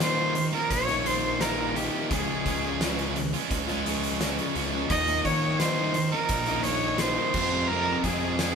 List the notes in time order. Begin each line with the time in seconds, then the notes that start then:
Already playing: D#3
0.00 D#3 F3 A#3 D#4 F4 C5, snare, closed hi-hat
0.17 A#3 D#4 F4
0.35 muted distorted electric guitar stroke, muted overdriven electric guitar stroke, closed hi-hat
0.52 F3 A#3 F4 A#4
0.71 A#1 C#5, kick, closed hi-hat
0.87 F3 A#3 D#4 F4, snare, closed hi-hat
1.04 D#3 F3 A#3 D#4 F4 C5, closed hi-hat
1.39 D#3 F3 A#3 D#4 F4 A#4, snare, closed hi-hat
1.57 F3 A#3 D#4 F4
1.75 D#3 F3 A#3 D#4 F4 G4, closed hi-hat
1.92 A#3 D#4 F4
1.96 F3
2.10 C#2 C#3 F3 G#3 C#4 F4 G#4, kick, closed hi-hat
2.27 G#3 C#4 F4
2.45 C#2 C#3 F3 G#3 C#4 F4, kick, closed hi-hat
2.80 C#3 F3 G#3 C#4 F4, snare, closed hi-hat
2.97 G#3 C#4 F4, closed hi-hat
3.16 muted overdriven electric guitar stroke, muted distorted electric guitar stroke, closed hi-hat
3.33 G#3 C#4 F4, closed hi-hat
3.51 C#2, kick, closed hi-hat
3.68 G#3 C#4 F4, snare, closed hi-hat
3.85 C#3 F3 G#3 C#4 F4, closed hi-hat
4.03 closed hi-hat
4.20 C#3 F3 G#3 C#4 F4, snare, closed hi-hat
4.37 G#3 C#4 F4, closed hi-hat
4.55 C#2 C#3 F3 G#3 C#4 F4, closed hi-hat
4.72 G#3 C#4 F4
4.89 D#2 D#3 F3 A#3 D#4 F4 D#5, kick, closed hi-hat
5.06 F3 A#3 D#4, closed hi-hat
5.24 D#3 F3 A#3 D#4 F4 C#5, kick, closed hi-hat
5.59 D#3 F3 A#3 D#4 F4 C5, snare, closed hi-hat
5.77 A#3 D#4 F4
5.94 muted distorted electric guitar stroke, muted overdriven electric guitar stroke, closed hi-hat
6.12 F3 A#3 D#4 A#4
6.29 A#1, kick, closed hi-hat
6.46 F3 A#3 D#4 F4, closed hi-hat
6.63 D#3 F3 A#3 C#5, closed hi-hat
6.67 D#4 F4
6.98 D#3 F3 A#3 D#4 C5, snare, closed hi-hat
7.02 F4
7.15 F3 A#3 D#4 F4
7.34 F2 C3 F3 G#3 C4 F4, kick, crash
7.51 F3 G#3 C4 F4
7.68 F2 C3 F3 A#4
7.72 G#3 C4 F4
7.87 F3 G#3 C4
8.03 F2 C3 F3 G#3 G#4, kick, closed hi-hat
8.08 C4 F4
8.39 F2 C3 F3 G#3 C4 F4, snare, closed hi-hat